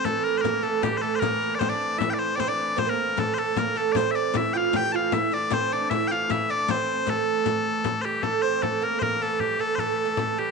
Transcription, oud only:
\new Staff \with { instrumentName = "Oud" } { \time 3/4 \key a \phrygian \tempo 4 = 154 a4 bes8 a8 g8 a8 | bes4 c'16 d'8. e'4 | c'16 d'8. c'16 bes8. a8 a8 | bes8 a8 c'4 e'8 f'8 |
g'8 f'8 e'8 d'8 c'8 d'8 | e'8 f'8 e'8 d'8 c'4 | a2 r8 g8 | a8 c'8 a8 bes8 bes8 a8 |
g8 a8 \tuplet 3/2 { a8 a8 a8 } a8 g8 | }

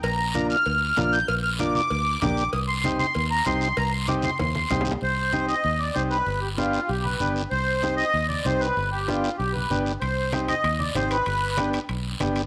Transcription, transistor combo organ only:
\new Staff \with { instrumentName = "Transistor combo organ" } { \time 4/4 \key c \minor \tempo 4 = 192 r4 <bes d' f'>8 r4. <bes d' f'>8 r8 | r4 <bes d' f'>8 r4. <bes d' g'>8 r8 | r4 <c' ees' g'>8 r4. <c' ees' g'>8 r8 | r4 <c' ees' g'>8 r4. <c' ees' g'>8 r8 |
r4 <c' ees' g'>8 r4. <c' ees' g'>8 r8 | r4 <b d' g'>8 r4. <b d' g'>8 r8 | r4 <c' ees' g'>8 r4. <c' ees' g'>8 r8 | r4 <b d' g'>8 r4. <b d' g'>8 r8 |
r4 <c' ees' g'>8 r4. <c' ees' g'>8 r8 | r4 <b d' g'>8 r4. <b d' g'>8 r8 | }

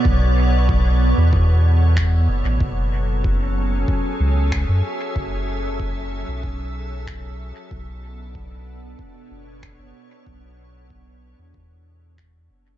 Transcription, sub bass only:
\new Staff \with { instrumentName = "Sub bass" } { \clef bass \time 4/4 \key b \dorian \tempo 4 = 94 b,,4.~ b,,16 e,4.~ e,16 fis,,16 a,,16 | fis,,2 r8 cis,8. fis,16 r8 | fis,,4.~ fis,,16 b,,2 r16 | b,,2 r8 fis,,8. fis,,16 r8 |
b,,4.~ b,,16 e,4.~ e,16 fis,,8 | }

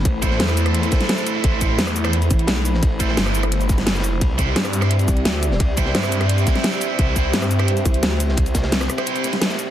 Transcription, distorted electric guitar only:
\new Staff \with { instrumentName = "Distorted electric guitar" } { \time 4/4 \key c \major \tempo 4 = 173 r8 <e' a' c''>4~ <e' a' c''>16 <e' a' c''>2~ <e' a' c''>16~ | <e' a' c''>8 <e' a' c''>8 r8. <e' a' c''>16 r2 | r8 <e' a' c''>4~ <e' a' c''>16 r2 r16 | r8 <e' g' c''>8 r8. <e' g' c''>16 r2 |
r8 <e' g' c''>4~ <e' g' c''>16 <e' g' c''>2~ <e' g' c''>16~ | <e' g' c''>8 <e' g' c''>8 r8. <e' g' c''>16 r2 | r4. r16 <e' g' c''>4 r4 r16 | }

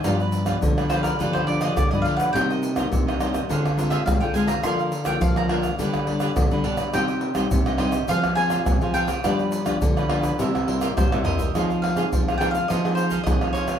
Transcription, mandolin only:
\new Staff \with { instrumentName = "Mandolin" } { \time 4/4 \key c \minor \tempo 4 = 104 r4. c''16 bes'16 b'16 c''16 d''16 ees''16 d''16 ees''16 f''16 fis''16 | g''8 r2 r16 e''16 f''16 g''16 aes''16 bes''16 | c'''8. g''16 f''16 bes''16 r2 r8 | g''4. ees''8 f''8 aes''4 g''8~ |
g''4 r2 c''8 ees''8~ | \key f \minor ees''8 f''4 g''16 f''16 ees''8 c''8 ees''8 des''8 | }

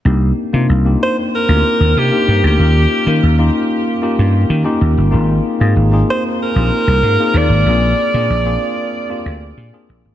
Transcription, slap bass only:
\new Staff \with { instrumentName = "Slap bass" } { \clef bass \time 4/4 \key c \minor \tempo 4 = 95 c,8 r16 c16 c,8 r8. d,16 r16 ees,16 c16 r16 g,16 d,16 | ees,8 r16 ees16 ees,8 r4 g,8 ees16 r16 ees,16 g,,16 | aes,,8 r16 aes,16 aes,,8 r8. bes,,16 r16 c,16 aes,16 r16 ees,16 aes,,16 | bes,,8 r16 bes,16 bes,,8 r4 d,8 bes,16 r16 bes,,16 aes,,16 | }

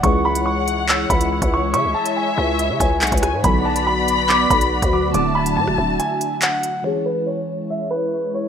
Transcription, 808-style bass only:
\new Staff \with { instrumentName = "808-style bass" } { \clef bass \time 4/4 \key cis \phrygian \tempo 4 = 141 cis,2~ cis,8 cis,8. cis,8. | cis16 cis,16 r4 cis,8. cis16 cis,8 b,,16 cis,8 gis,16 | b,,2~ b,,8 b,,8. d,8. | d,,4 a,16 d,,16 d,,8 r2 |
r1 | }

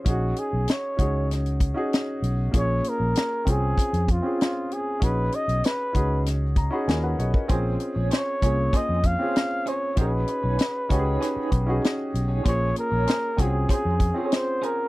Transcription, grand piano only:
\new Staff \with { instrumentName = "Grand piano" } { \time 4/4 \key bes \minor \tempo 4 = 97 << { r1 | r1 | r2 r8 bes''16 b''16 <f' bes' gis''>16 <fis' b' fis''>16 <gis' cis'' dis''>16 <bes' dis''>16~ | <bes' dis''>16 r2. r8. |
r1 | r1 | } \\ { <cis' dis' fis' gis'>4 r8 <cis' dis' fis' gis'>8. r8 <cis' dis' fis' gis'>8. r8 | <bes des' f' aes'>4 r8 <c' des' f' aes'>8. r8 <c' des' f' aes'>8. r8 | <cis' dis' fis' gis'>4 r8 <cis' dis' fis' gis'>8. r8 <cis' dis' fis' gis'>8. r8 | <c' des' f' aes'>4 r8 <bes des' f' aes'>8. r8 <c' des' f' aes'>8. r8 |
<cis' dis' fis' gis'>4 r8 <cis' dis' fis' g' gis'>8. r8 <cis' dis' fis' gis'>8. r8 | <bes des' f' aes'>4 r8 <c' des' f' ges' aes'>8. r8 <c' des' f' aes'>8. r8 | } >> }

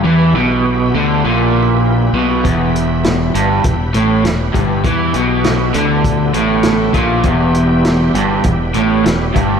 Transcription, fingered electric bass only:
\new Staff \with { instrumentName = "Fingered electric bass" } { \clef bass \time 4/4 \key e \minor \tempo 4 = 100 e,8 b,,4 d,8 ais,,4. b,,8 | e,,4. g,,8 e,,8 a,,8 e,,8 g,,8 | e,8 b,,4 d,4 a,,4 ais,,8 | e,,4. g,,8 e,,8 a,,8 e,,8 g,,8 | }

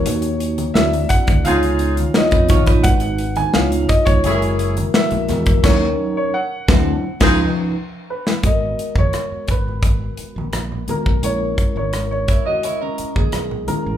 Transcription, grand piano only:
\new Staff \with { instrumentName = "Grand piano" } { \time 4/4 \key gis \minor \tempo 4 = 86 cis''4 e''8 fis''8 eis''4 dis''4 | fis''8. gis''16 eis''8 dis''16 cis''4 r16 e''4 | cis''8. cis''16 fis''2~ fis''8 b'8 | dis''8. cis''8. b'2 ais'8 |
cis''8. cis''8 cis''8 dis''4.~ dis''16 ais'8 | }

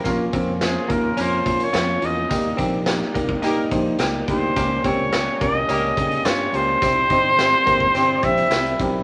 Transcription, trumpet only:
\new Staff \with { instrumentName = "Trumpet" } { \time 4/4 \key bes \dorian \tempo 4 = 106 r4 aes'8 bes'8 c''8. des''8. ees''8~ | ees''8 r2. c''8~ | c''8 des''4 ees''4. des''8 c''8~ | c''2~ c''8 e''4 r8 | }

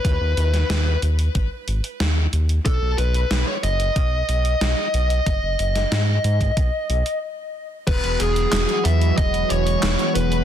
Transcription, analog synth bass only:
\new Staff \with { instrumentName = "Analog synth bass" } { \clef bass \time 4/4 \key e \major \tempo 4 = 92 dis,16 dis,16 dis,8 dis,8 dis,8 gis,,16 r16 gis,,16 r16 dis,8 dis,8 | b,,16 b,,16 b,,8 b,,16 r16 fis,,8 b,,8 b,,8 b,,16 r16 b,,8 | fis,,16 fis,,16 fis,,8 gis,8 gis,8 b,,16 r16 b,,16 r4 r16 | e,,16 e,,16 e,,8 e,,16 r16 e,8 e,,8 e,,8 e,,16 r16 e,,8 | }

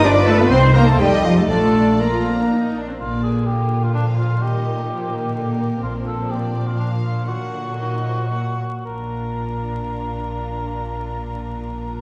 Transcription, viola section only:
\new Staff \with { instrumentName = "Viola section" } { \time 3/4 \key bes \major \tempo 4 = 121 << { b'4 c''4 a'8 g'8 | f'4 f'8 c'16 d'16 ees'8 d'16 c'16 | bes2 f4 | g8 a8 bes4 bes4 |
bes2 f4 | ges2 bes8 r8 | r2. | r2. | } \\ { f'4 ees'4 ees'4 | d'4 r2 | d2. | ees4 f8 ees8 d8 ees8 |
f2. | ees8 d8 ees8 f8 ges8 r8 | d'2.~ | d'2. | } >> }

